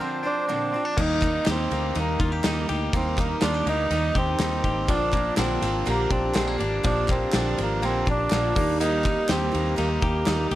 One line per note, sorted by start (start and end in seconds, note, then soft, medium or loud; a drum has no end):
0.00 0.24 D3 medium
0.00 0.24 F3 medium
0.00 0.97 F3 medium
0.00 0.23 C4 medium
0.00 0.22 D4 medium
0.00 1.47 A#4 medium
0.00 0.45 C5 medium
0.23 0.48 F3 soft
0.23 0.48 C4 soft
0.23 0.48 D4 medium
0.23 1.01 D4 loud
0.49 0.73 A#2 medium
0.49 0.73 D3 medium
0.49 0.73 F3 medium
0.49 0.73 C4 medium
0.49 0.73 D4 medium
0.74 0.98 F3 soft
0.74 0.98 C4 medium
0.74 0.98 D4 medium
0.85 1.02 D4 soft
0.98 1.38 D#2 loud
0.98 1.23 D#3 medium
0.98 1.23 G3 medium
0.98 1.23 A#3 medium
0.98 4.86 D#4 medium
0.98 1.21 D#4 medium
0.98 1.49 D#4 loud
0.98 kick loud
0.98 crash loud
1.22 1.45 G3 soft
1.22 1.46 A#3 medium
1.22 1.46 D#4 medium
1.22 kick loud
1.22 clap medium
1.22 ride medium
1.46 1.67 D#2 loud
1.46 1.71 D#3 medium
1.46 1.71 G3 medium
1.46 1.70 A#3 medium
1.46 1.69 D#4 medium
1.46 2.20 G4 medium
1.46 snare loud
1.46 clap medium
1.46 ride medium
1.50 1.99 C4 loud
1.70 1.91 D2 medium
1.70 1.94 G3 soft
1.70 1.94 A#3 soft
1.70 1.95 D#4 medium
1.70 ride medium
1.95 2.16 D#2 loud
1.95 2.20 D#3 medium
1.95 2.20 G3 medium
1.95 2.19 A#3 medium
1.95 2.18 D#4 medium
1.95 ride medium
1.99 2.20 A#3 medium
2.19 2.40 D#2 loud
2.19 2.43 G3 soft
2.19 2.44 A#3 medium
2.19 2.67 A#3 medium
2.19 2.44 D#4 medium
2.19 2.32 F4 medium
2.19 kick medium
2.19 ride soft
2.32 2.68 G4 medium
2.44 2.65 D#2 medium
2.44 2.69 D#3 medium
2.44 2.69 G3 medium
2.44 2.68 A#3 medium
2.44 2.67 D#4 medium
2.44 snare loud
2.44 clap medium
2.44 ride medium
2.69 2.90 D2 medium
2.69 2.94 G3 soft
2.69 2.93 A#3 medium
2.69 2.93 D#4 medium
2.69 3.42 G4 medium
2.69 ride medium
2.93 3.34 D#2 loud
2.93 3.18 D#3 medium
2.93 3.19 G3 medium
2.93 3.19 A#3 medium
2.93 3.19 C4 loud
2.93 3.17 D#4 medium
2.93 kick loud
2.93 ride medium
3.18 3.40 G3 soft
3.18 3.44 A#3 medium
3.18 3.41 A#3 medium
3.18 3.41 D#4 medium
3.18 kick loud
3.18 clap medium
3.18 ride medium
3.41 3.62 D#2 medium
3.41 3.66 D#3 medium
3.41 3.66 G3 medium
3.41 3.66 A#3 medium
3.41 3.68 D4 loud
3.41 3.65 D#4 medium
3.41 3.54 F4 medium
3.41 snare loud
3.41 clap medium
3.41 ride medium
3.54 4.14 G4 medium
3.66 3.87 D2 medium
3.66 3.90 G3 soft
3.66 3.91 A#3 soft
3.66 3.91 D#4 medium
3.66 4.18 D#4 loud
3.66 ride medium
3.91 4.11 D#2 loud
3.91 4.16 D#3 medium
3.91 4.16 G3 medium
3.91 4.15 A#3 medium
3.91 4.14 D#4 medium
3.91 ride medium
4.15 4.35 D#2 loud
4.15 4.39 G3 soft
4.15 4.40 A#3 soft
4.15 4.92 C4 loud
4.15 4.40 D#4 medium
4.15 4.63 G4 medium
4.15 kick medium
4.15 ride medium
4.39 4.60 D#2 medium
4.39 4.64 D#3 medium
4.39 4.65 G3 medium
4.39 4.64 A#3 loud
4.39 4.63 D#4 medium
4.39 snare loud
4.39 clap medium
4.39 ride medium
4.64 4.89 G#1 medium
4.64 4.89 G3 soft
4.64 4.89 A#3 medium
4.64 4.89 D#4 medium
4.64 4.94 G4 medium
4.64 kick medium
4.64 ride medium
4.88 5.29 A#1 loud
4.88 5.13 A#2 medium
4.88 5.14 D3 medium
4.88 5.13 F3 medium
4.88 5.12 A#3 medium
4.88 5.34 D4 loud
4.88 5.11 D4 medium
4.88 5.83 F4 loud
4.88 kick loud
4.88 ride medium
5.13 5.36 F3 soft
5.13 5.36 A#3 soft
5.13 5.36 D4 medium
5.13 kick medium
5.13 clap medium
5.13 ride medium
5.36 5.58 A#1 loud
5.36 5.62 A#2 medium
5.36 5.62 D3 medium
5.36 5.62 F3 medium
5.36 5.61 A#3 medium
5.36 5.89 C4 medium
5.36 5.60 D4 medium
5.36 snare medium
5.36 clap medium
5.36 ride medium
5.61 5.82 G#1 medium
5.61 5.85 F3 soft
5.61 5.85 A#3 soft
5.61 5.86 D4 medium
5.61 snare soft
5.61 ride medium
5.85 6.07 A#1 loud
5.85 6.11 D3 medium
5.85 6.10 F3 medium
5.85 6.10 A#3 medium
5.85 6.11 A#3 medium
5.85 6.09 D4 medium
5.85 8.39 G4 loud
5.85 ride medium
6.10 6.31 A#1 loud
6.10 6.33 F3 soft
6.10 6.34 A#3 soft
6.10 6.56 C4 medium
6.10 6.34 D4 medium
6.10 kick medium
6.10 ride medium
6.34 6.56 A#1 medium
6.34 6.59 A#2 medium
6.34 6.59 D3 medium
6.34 6.59 F3 medium
6.34 6.48 G#3 medium
6.34 6.58 A#3 medium
6.34 6.57 D4 loud
6.34 snare loud
6.34 clap medium
6.34 ride medium
6.48 7.08 A#3 medium
6.58 6.80 G#1 medium
6.58 6.82 F3 soft
6.58 6.83 A#3 medium
6.58 6.83 D4 medium
6.58 ride medium
6.83 7.25 A#1 loud
6.83 7.08 A#2 medium
6.83 7.09 D3 medium
6.83 7.08 F3 medium
6.83 7.07 A#3 medium
6.83 7.06 D4 medium
6.83 7.10 D4 loud
6.83 kick loud
6.83 ride medium
7.07 7.32 F3 medium
7.07 7.33 A#3 medium
7.07 7.60 C4 medium
7.07 7.33 D4 medium
7.07 kick loud
7.07 clap medium
7.07 ride medium
7.32 7.54 A#1 medium
7.32 7.58 A#2 medium
7.32 7.58 D3 medium
7.32 7.58 F3 medium
7.32 7.58 A#3 loud
7.32 7.56 D4 medium
7.32 snare loud
7.32 clap medium
7.32 ride medium
7.58 7.83 G#1 loud
7.58 7.81 F3 soft
7.58 7.82 A#3 medium
7.58 7.85 A#3 medium
7.58 7.82 D4 medium
7.58 ride medium
7.82 8.03 A#1 loud
7.82 8.07 D3 medium
7.82 8.06 F3 medium
7.82 8.05 A#3 medium
7.82 8.08 C4 loud
7.82 8.05 D4 medium
7.82 ride medium
8.06 8.27 A#1 medium
8.06 8.30 F3 soft
8.06 8.31 A#3 soft
8.06 8.31 D4 soft
8.06 kick medium
8.06 ride medium
8.10 8.78 D4 loud
8.31 8.52 A#1 medium
8.31 8.56 A#2 medium
8.31 8.56 D3 medium
8.31 8.56 F3 medium
8.31 8.55 A#3 medium
8.31 8.55 D4 medium
8.31 8.56 F4 medium
8.31 snare loud
8.31 clap medium
8.31 ride medium
8.55 9.16 D#2 medium
8.55 8.79 G3 soft
8.55 8.80 A#3 medium
8.55 8.80 D#4 medium
8.55 10.55 G4 loud
8.55 kick loud
8.55 open hi-hat medium
8.55 ride medium
8.80 9.05 D#3 medium
8.80 9.04 G3 medium
8.80 9.03 A#3 medium
8.80 9.31 D#4 loud
8.80 9.02 D#4 medium
8.80 hi-hat pedal medium
8.80 ride medium
9.03 9.28 G3 soft
9.03 9.28 A#3 medium
9.03 9.28 D#4 medium
9.03 kick loud
9.03 clap medium
9.03 ride medium
9.28 9.50 D#2 loud
9.28 9.53 D#3 medium
9.28 9.53 G3 medium
9.28 9.51 A#3 medium
9.28 9.75 C4 loud
9.28 9.50 D#4 medium
9.28 10.02 G4 medium
9.28 snare loud
9.28 clap medium
9.28 ride medium
9.52 9.74 D#2 medium
9.52 9.76 G3 soft
9.52 9.77 A#3 medium
9.52 9.77 D#4 medium
9.52 ride medium
9.76 9.98 D#2 loud
9.76 10.02 D#3 medium
9.76 10.02 G3 medium
9.76 9.89 A#3 medium
9.76 10.01 A#3 medium
9.76 10.00 D#4 medium
9.76 ride medium
10.01 10.23 D#2 medium
10.01 10.26 G3 soft
10.01 10.47 A#3 medium
10.01 10.26 A#3 soft
10.01 10.27 D#4 medium
10.01 10.51 G4 medium
10.01 kick medium
10.01 ride medium
10.27 10.48 D#2 medium
10.27 10.52 D#3 medium
10.27 10.52 G3 medium
10.27 10.51 A#3 medium
10.27 10.50 D#4 medium
10.27 snare loud
10.27 clap medium
10.27 ride medium
10.51 10.55 D2 medium
10.51 10.55 D#4 medium
10.51 10.55 G4 medium
10.51 ride medium